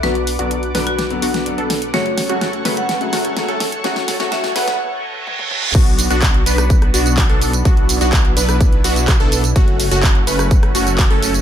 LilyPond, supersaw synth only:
\new Staff \with { instrumentName = "Supersaw synth" } { \time 4/4 \key b \minor \tempo 4 = 126 <b d' fis'>8. <b d' fis'>8. <b d' b'>4 <b d' fis'>8. <b d' a'>8 r16 | <a cis' fis'>8. <a cis' fis'>8. <a cis' b'>4 <a cis' fis'>8. <a cis' a'>8 r16 | <a cis' fis'>8. <a cis' fis'>8. <a cis' b'>8 r2 | <b d' fis'>8. <b d' fis'>8. <b d' b'>4 <b d' fis'>8. <b d' a'>8 r16 |
<b d' fis'>8. <b d' fis'>8. <b d' b'>4 <b d' fis'>8. <b d' a'>8 r16 | <a cis' fis'>8. <a cis' fis'>8. <a cis' b'>4 <a cis' fis'>8. <a cis' a'>8 r16 | }